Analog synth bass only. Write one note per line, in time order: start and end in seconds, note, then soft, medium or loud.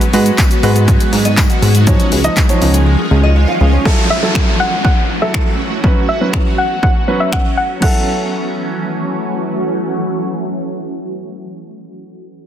0.13 0.31 G#2 loud
0.63 0.98 G#2 loud
1.13 1.47 G#2 medium
1.62 1.97 G#2 medium
2.12 2.29 C#2 medium
2.61 2.96 C#2 loud
3.11 3.46 C#2 medium
3.61 3.78 C#2 medium